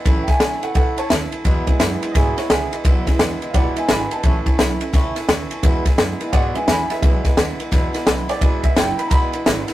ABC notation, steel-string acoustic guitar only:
X:1
M:4/4
L:1/8
Q:"Swing" 1/4=172
K:E
V:1 name="Steel-string acoustic guitar"
[A,,E,A,CE] [A,CE] [E,A,CE] [A,CE] [A,,E,A,CE] [A,CE] [E,A,CE] [A,CE] | [E,,B,,E,G,B,E] [E,G,B,E] [E,G,B,E] [E,G,B,E] [E,,B,,E,G,B,E] [E,G,B,E] [E,G,B,E] [E,G,B,E] | [E,,B,,E,G,B,E] [E,G,B,E] [E,G,B,E] [E,G,B,E] [E,,B,,E,G,B,E] [E,G,B,E] [G,E] [E,G,B,E] | [A,,E,A,CE] [A,CE] [E,A,CE] [A,CE] [A,,E,A,CE] [A,CE] [E,A,CE] [A,CE] |
[E,,B,,E,G,B,E] [E,G,B,E] [E,G,B,E] [E,G,B,E] [E,,B,,E,G,B,E] [E,G,B,E] [E,G,B,E] [E,G,B,E] | [E,,B,,E,G,B,E] [E,G,B,E] [E,G,B,E] [E,G,B,E] [E,,B,,E,G,B,E] [E,G,B,E] [E,G,B,E] [E,G,B,E] | [E,,B,,E,G,B,E] [E,G,B,E] [E,G,B,E] [E,G,B,E] [E,,B,,E,G,B,E] [E,G,B,E] [E,G,B,E] [E,G,B,E] |]